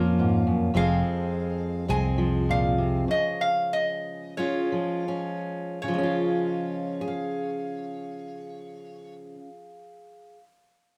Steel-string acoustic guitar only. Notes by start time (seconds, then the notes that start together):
Already playing: A#2 F3 A#3 C#4 F4
0.19 G#2
0.47 F#2
0.74 F2 F3 G#3 C4 G#4
1.88 G#3 C4 G#4
2.18 F3
2.49 A#2
2.78 C3
3.08 C#3
4.38 G#3 C#4 F4
4.72 F3
5.08 C#4
5.83 C#3
5.88 F3
5.93 G#3
5.98 C#4
6.03 F4
7.01 G#4
7.08 F5